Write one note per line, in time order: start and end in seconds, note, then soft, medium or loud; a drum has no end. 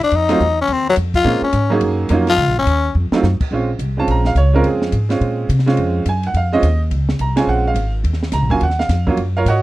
0.01 0.18 D4 medium
0.01 muted upright bass stroke soft
0.01 ride medium
0.11 0.39 F2 medium
0.11 ride medium
0.16 0.60 D#4 medium
0.29 0.39 F#3 medium
0.29 0.39 A3 medium
0.29 0.39 C4 medium
0.29 0.40 D#4 medium
0.29 0.40 F4 medium
0.29 snare soft
0.29 ride medium
0.39 0.68 E2 medium
0.39 hi-hat pedal medium
0.61 0.75 C#4 medium
0.68 0.96 D#2 medium
0.68 ride medium
0.73 0.89 C4 medium
0.90 0.95 F#3 loud
0.96 1.24 F2 medium
0.96 hi-hat pedal medium
0.96 ride medium
1.14 1.42 F4 loud
1.14 kick medium
1.14 ride soft
1.24 1.41 A#2 medium
1.24 1.41 G#3 medium
1.24 1.41 A#3 medium
1.24 1.41 C4 medium
1.24 1.41 C#4 medium
1.24 1.42 F4 medium
1.24 ride medium
1.42 1.80 C#4 medium
1.42 muted upright bass stroke soft
1.52 1.80 G#2 medium
1.52 hi-hat pedal medium
1.52 ride medium
1.70 2.07 F#3 medium
1.70 2.08 A#3 medium
1.70 2.08 C#4 medium
1.70 2.08 D#4 medium
1.70 2.08 G#4 medium
1.81 2.09 F#2 medium
1.81 ride medium
2.09 2.36 F2 medium
2.09 2.26 F#3 medium
2.09 2.26 A#3 medium
2.09 2.27 C#4 medium
2.09 2.27 D#4 medium
2.09 2.27 F4 medium
2.09 hi-hat pedal medium
2.09 ride medium
2.27 2.55 F4 loud
2.27 snare soft
2.27 ride soft
2.37 2.47 C#2 medium
2.37 ride medium
2.47 2.57 A#1 medium
2.57 2.65 G#1 medium
2.57 2.94 C#4 medium
2.66 2.94 D#2 medium
2.66 hi-hat pedal medium
2.66 ride medium
2.95 3.11 F2 loud
3.11 3.22 F#3 medium
3.11 3.23 A3 medium
3.11 3.23 C4 medium
3.11 3.23 D#4 medium
3.11 3.24 F4 medium
3.11 muted upright bass stroke soft
3.11 snare medium
3.23 3.39 F#2 medium
3.23 snare medium
3.23 hi-hat pedal medium
3.41 kick medium
3.41 crash medium
3.51 3.78 A#1 medium
3.51 3.67 G#3 medium
3.51 3.68 C4 medium
3.51 3.68 C#4 medium
3.51 3.68 F4 medium
3.79 4.07 C2 medium
3.79 hi-hat pedal medium
3.79 ride medium
3.97 4.34 G#3 medium
3.97 4.35 C4 medium
3.97 4.35 C#4 medium
3.97 4.35 F4 medium
3.97 4.09 A5 medium
4.07 4.34 A#1 medium
4.07 4.27 A#5 medium
4.07 ride medium
4.25 4.37 F5 loud
4.25 snare soft
4.35 4.63 C#2 medium
4.35 4.54 C#5 medium
4.35 hi-hat pedal medium
4.35 ride medium
4.54 4.91 G#3 medium
4.54 4.91 C4 medium
4.54 4.91 C#4 medium
4.54 4.92 F4 medium
4.54 4.65 A#4 medium
4.63 4.91 F2 medium
4.63 5.47 G#4 medium
4.63 ride medium
4.82 snare medium
4.92 5.20 G#2 medium
4.92 hi-hat pedal medium
4.92 ride medium
5.09 5.47 G#3 medium
5.09 5.47 C4 medium
5.09 5.47 C#4 medium
5.09 5.47 F4 medium
5.09 snare soft
5.09 ride medium
5.21 5.48 A#2 medium
5.21 ride medium
5.49 5.77 C3 loud
5.49 hi-hat pedal medium
5.49 ride medium
5.59 snare soft
5.66 6.04 G#3 medium
5.66 6.04 C4 medium
5.66 6.04 C#4 medium
5.66 6.04 F4 medium
5.66 snare soft
5.66 ride medium
5.77 6.05 F2 loud
5.77 ride medium
6.05 6.33 F#2 medium
6.05 6.25 G#5 medium
6.05 hi-hat pedal medium
6.05 ride medium
6.23 6.36 F#5 medium
6.23 ride soft
6.34 6.62 F2 medium
6.34 6.53 F5 medium
6.34 ride medium
6.53 6.62 G#3 medium
6.53 6.62 C4 medium
6.53 6.62 C#4 medium
6.53 6.63 F4 medium
6.53 6.79 D#5 loud
6.62 6.90 D#2 loud
6.62 hi-hat pedal medium
6.62 ride medium
6.91 7.18 C#2 medium
6.91 ride medium
7.09 snare medium
7.19 7.46 C2 medium
7.19 7.37 A#5 medium
7.19 hi-hat pedal medium
7.19 ride medium
7.36 7.73 G#3 medium
7.36 7.74 C4 medium
7.36 7.74 C#4 medium
7.36 7.74 F4 medium
7.36 7.47 G#5 medium
7.36 snare medium
7.36 ride medium
7.47 7.74 A#1 medium
7.47 7.65 F#5 medium
7.67 7.93 F5 medium
7.74 8.03 G#1 medium
7.74 hi-hat pedal medium
7.74 ride medium
8.04 8.32 D#2 medium
8.04 ride medium
8.13 snare soft
8.23 snare soft
8.32 8.42 C#2 medium
8.32 8.50 A#5 medium
8.32 snare soft
8.32 hi-hat pedal medium
8.32 ride medium
8.42 8.51 A#1 medium
8.50 8.60 F#1 medium
8.50 8.60 F#3 medium
8.50 8.60 A#3 soft
8.50 8.61 C#4 medium
8.50 8.61 F4 medium
8.50 8.61 G#5 loud
8.50 kick medium
8.61 8.88 D#2 medium
8.61 8.79 F#5 medium
8.61 ride medium
8.70 snare soft
8.79 9.05 F5 medium
8.79 snare medium
8.89 9.16 F2 medium
8.89 snare soft
8.89 hi-hat pedal medium
8.89 ride medium
9.07 9.17 F#3 medium
9.07 9.17 A#3 medium
9.07 9.17 C#4 medium
9.07 9.18 F4 medium
9.07 kick medium
9.17 9.45 F#2 medium
9.17 ride medium
9.37 9.47 F4 medium
9.37 9.47 A#4 medium
9.37 9.47 C#5 medium
9.37 9.46 F5 medium
9.45 9.62 G#2 medium
9.45 9.62 F#4 medium
9.45 9.62 C#5 medium
9.45 9.62 F#5 loud
9.45 hi-hat pedal medium
9.45 ride medium
9.49 9.62 D#5 medium